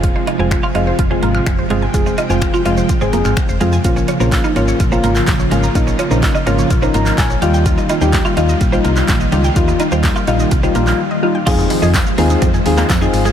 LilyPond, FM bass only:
\new Staff \with { instrumentName = "FM bass" } { \clef bass \time 4/4 \key f \minor \tempo 4 = 126 f,,8 r16 f,,8 r16 f,,8 f,,8 aes,,8 f,,8 g,,8 | f,,8 r16 f,,8 r16 f,,8 r16 aes,,16 f,,16 aes,,16 r16 f,,16 f,8 | bes,,8 r16 bes,,8 r16 aes,,8 bes,,8 aes,,8 bes,,8 aes,,8 | bes,,8 r16 bes,,8 r16 aes,,8 bes,,8 aes,,8 bes,,8 ees,8~ |
ees,8 r16 ees,8 r16 ees,8 bes,,8 c,8 bes,,8 des,8 | ees,8 r16 ees,8 r16 bes,,8 c,8 bes,,8 r4 | f,8 r16 f,8 r16 ees,8 f,8 ees,8 f,8 aes,,8 | }